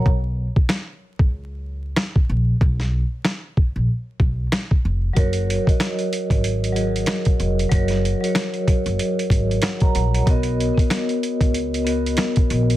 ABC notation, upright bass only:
X:1
M:4/4
L:1/16
Q:"Swing 16ths" 1/4=94
K:C#mix
V:1 name="Upright bass" clef=bass
B,,,3 z4 C,,4- C,, z2 A,,,2 | B,,,3 z4 A,,, z2 B,,,2 z2 E,,,2 | F,,,3 z4 G,,,4- G,,, z2 E,,,2 | F,,,3 z4 F,,, z2 G,,,2 z2 A,,,2 |
B,,,3 z4 C,,4- C,, z2 A,,,2 |]